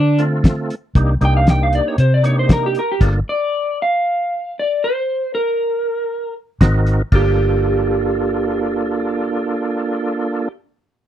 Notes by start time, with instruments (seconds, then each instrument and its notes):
Already playing: fingered electric bass D3, electric slide guitar D4
0.18 tonewheel organ A3 C4 F4 A4, closed hi-hat
0.44 kick, snare, closed hi-hat
0.70 closed hi-hat
0.95 fingered electric bass C2, tonewheel organ A#3 D4 D#4 G4, kick, closed hi-hat
1.21 fingered electric bass C2, tonewheel organ A#3 D4 D#4 G4, closed hi-hat
1.25 electric slide guitar G5
1.37 electric slide guitar F5
1.47 electric slide guitar G5, snare, closed hi-hat
1.63 electric slide guitar F5
1.73 electric slide guitar D5, closed hi-hat
1.88 electric slide guitar C#5
1.98 fingered electric bass C3, electric slide guitar C5, closed hi-hat
2.14 electric slide guitar D5
2.23 tonewheel organ A#3 D4 D#4 G4, electric slide guitar C#5, closed hi-hat
2.39 electric slide guitar C5
2.49 electric slide guitar A#4, kick, snare, closed hi-hat
2.66 electric slide guitar G4
2.75 closed hi-hat
2.79 electric slide guitar A#4
2.92 electric slide guitar G4
3.01 fingered electric bass G1, tonewheel organ A#3 D4 F4 A4, kick, closed hi-hat, crash
3.29 electric slide guitar D5
3.82 electric slide guitar F5
4.59 electric slide guitar D5
4.84 electric slide guitar C5
5.35 electric slide guitar A#4
6.61 fingered electric bass G#1, tonewheel organ C4 D#4 F#4 A#4, kick, snare, closed hi-hat
6.86 closed hi-hat
7.12 fingered electric bass G1, tonewheel organ A#3 D4 F4 A4, electric slide guitar G4, kick, crash